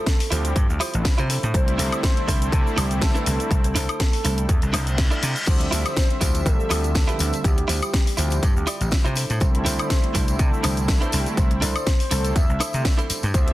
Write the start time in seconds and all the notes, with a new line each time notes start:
Already playing: A4
0.06 kick, snare, closed hi-hat, cabasa
0.20 open hi-hat, cabasa
0.30 D2 D3 F3 G3 C4 E4 F4 G4 C5, open hi-hat, cabasa
0.44 D3 F3 G3 C4 E4, closed hi-hat, cabasa
0.56 G2, kick, closed hi-hat, cabasa
0.69 D2, cabasa
0.80 E4 F4 G4 C5, open hi-hat, cabasa, high woodblock
0.94 A1 D3 F3 G3 C4 E4, closed hi-hat, cabasa
1.05 muted clean electric guitar stroke, kick, snare, closed hi-hat, cabasa
1.18 C3 E4 F4 G4 C5, closed hi-hat, cabasa
1.29 D4 E4 A4 C5, open hi-hat, cabasa
1.43 A2, closed hi-hat, cabasa
1.54 C2 D3 G3 A3 C4 E4 C5, kick, closed hi-hat, cabasa
1.67 muted clean electric guitar stroke, closed hi-hat
1.78 C2 D4 E4 A4 C5, open hi-hat, cabasa
1.92 closed hi-hat, cabasa, high woodblock
2.03 kick, snare, closed hi-hat, cabasa
2.17 closed hi-hat
2.27 C2 D3 G3 A3 C4 D4 E4 A4 C5, kick, open hi-hat, cabasa
2.41 D3 G3 A3 C4 E4, closed hi-hat, cabasa
2.52 C3 A4, kick, closed hi-hat, cabasa
2.67 cabasa
2.76 C2 D4 E4 G4 A4 C5, open hi-hat, cabasa, high woodblock
2.90 D3 G3 A3 C4 E4, closed hi-hat, cabasa
3.01 A4, muted clean electric guitar stroke, kick, snare, closed hi-hat, cabasa
3.14 D4 E4 A4 B4, closed hi-hat, cabasa
3.26 C2 A4, open hi-hat, cabasa
3.40 closed hi-hat, cabasa
3.51 C2 D3 G3 A3 C4 E4 A4, kick, closed hi-hat, cabasa
3.64 muted clean electric guitar stroke, closed hi-hat, cabasa
3.75 C2 D4 E4 A4 C5, open hi-hat, cabasa
3.89 closed hi-hat, cabasa, high woodblock
4.00 kick, snare, closed hi-hat, cabasa
4.13 open hi-hat
4.24 C2 D3 G3 A3 C4 D4 E4 A4 C5, open hi-hat, cabasa
4.38 D3 G3 A3 C4 E4, closed hi-hat, cabasa
4.49 E2, kick, closed hi-hat, reverse cymbal, cabasa
4.62 C2, closed hi-hat, cabasa
4.73 C2 D4 E4 A4 C5, open hi-hat, cabasa, high woodblock
4.87 D3 G3 A3 C4 E4, closed hi-hat, cabasa
4.98 kick, snare, closed hi-hat, cabasa
5.10 D4 E4 A4 D5, closed hi-hat, cabasa
5.23 C3, open hi-hat, cabasa
5.36 closed hi-hat, cabasa
5.46 D2 D3 F3 G3 C4 C5 E5, kick, closed hi-hat, crash, tambourine, cabasa
5.60 muted clean electric guitar stroke, closed hi-hat
5.71 D2 E4 F4 G4 C5, open hi-hat, tambourine, cabasa
5.85 closed hi-hat, tambourine, cabasa, high woodblock
5.96 kick, snare, closed hi-hat, tambourine, cabasa
6.11 closed hi-hat
6.20 D2 D3 F3 G3 C4 E4 F4 G4 C5, kick, open hi-hat, tambourine, cabasa
6.33 D3 F3 G3 C4 E5, closed hi-hat, tambourine, cabasa
6.46 A1 A4, kick, closed hi-hat, tambourine, cabasa
6.60 cabasa
6.70 D2 E4 F4 G4 C5, open hi-hat, tambourine, cabasa, high woodblock
6.83 D3 F3 G3 C4 E5, closed hi-hat, tambourine, cabasa
6.95 kick, snare, closed hi-hat, tambourine, cabasa
7.08 E4 F4 G4 B4, closed hi-hat, cabasa
7.19 D2, open hi-hat, tambourine, cabasa
7.33 closed hi-hat, tambourine, cabasa
7.44 D2 D3 F3 G3 C4 E4 G4, kick, closed hi-hat, tambourine, cabasa
7.56 muted clean electric guitar stroke, closed hi-hat
7.68 D2 E4 F4 G4 C5, open hi-hat, tambourine, cabasa
7.82 closed hi-hat, tambourine, cabasa, high woodblock
7.94 kick, snare, closed hi-hat, tambourine, cabasa
8.07 open hi-hat, cabasa
8.17 D2 D3 F3 G3 C4 E4 F4 G4 C5, open hi-hat, tambourine, cabasa
8.30 D3 F3 G3 C4 E4, closed hi-hat, tambourine, cabasa
8.43 G2 G4, kick, closed hi-hat, tambourine, cabasa
8.56 D2, cabasa
8.67 E4 F4 G4 D5, open hi-hat, tambourine, cabasa, high woodblock
8.80 A1 D3 F3 G3 C4 E4, closed hi-hat, tambourine, cabasa
8.91 muted clean electric guitar stroke, kick, snare, closed hi-hat, tambourine, cabasa
9.04 C3 E4 F4 G4 C5, closed hi-hat, cabasa
9.15 D4 E4 A4 C5, open hi-hat, tambourine, cabasa
9.30 A2, closed hi-hat, tambourine, cabasa
9.40 C2 D3 G3 A3 C4 E4 C5, kick, closed hi-hat, tambourine, cabasa
9.54 muted clean electric guitar stroke, closed hi-hat
9.65 C2 D4 E4 A4 C5, open hi-hat, tambourine, cabasa
9.79 closed hi-hat, tambourine, cabasa, high woodblock
9.90 kick, snare, closed hi-hat, tambourine, cabasa
10.04 closed hi-hat
10.14 C2 D3 G3 A3 C4 D4 E4 A4 C5, kick, open hi-hat, tambourine, cabasa
10.27 D3 G3 A3 C4 E4, closed hi-hat, tambourine, cabasa
10.39 C3 A4, kick, closed hi-hat, tambourine, cabasa
10.53 cabasa
10.63 C2 D4 E4 A4 C5, open hi-hat, tambourine, cabasa, high woodblock
10.76 D3 G3 A3 C4 E4, closed hi-hat, tambourine, cabasa
10.88 muted clean electric guitar stroke, kick, snare, closed hi-hat, tambourine, cabasa
11.01 D4 E4 A4 B4 C5, closed hi-hat, cabasa
11.10 C2 A4, open hi-hat, tambourine, cabasa
11.20 G4
11.26 A4, closed hi-hat, tambourine, cabasa
11.37 C2 D3 G3 A3 C4 E4 C5, kick, closed hi-hat, tambourine, cabasa
11.50 muted clean electric guitar stroke, closed hi-hat
11.61 C2 D4 E4 A4 D5, open hi-hat, tambourine, cabasa
11.76 closed hi-hat, tambourine, cabasa, high woodblock
11.86 kick, snare, closed hi-hat, tambourine, cabasa
12.00 open hi-hat, cabasa
12.10 C2 D3 G3 A3 C4 D4 E4 A4 C5, open hi-hat, tambourine, cabasa
12.24 D3 G3 A3 C4 E4, closed hi-hat, tambourine, cabasa
12.36 E2 E5, kick, closed hi-hat, tambourine, cabasa
12.49 C2, cabasa
12.60 D4 E4 A4 C5, open hi-hat, tambourine, cabasa, high woodblock
12.73 C3 D3 G3 A3 C4 E4, closed hi-hat, tambourine, cabasa
12.85 kick, snare, closed hi-hat, tambourine, cabasa
12.97 D4 E4 A4 C5, closed hi-hat, cabasa
13.10 muted slap bass stroke, open hi-hat, tambourine, cabasa
13.23 G2, closed hi-hat, tambourine, cabasa
13.33 D2 D3 F3 G3 C4 C5 E5, kick, closed hi-hat, tambourine, cabasa
13.47 muted clean electric guitar stroke, closed hi-hat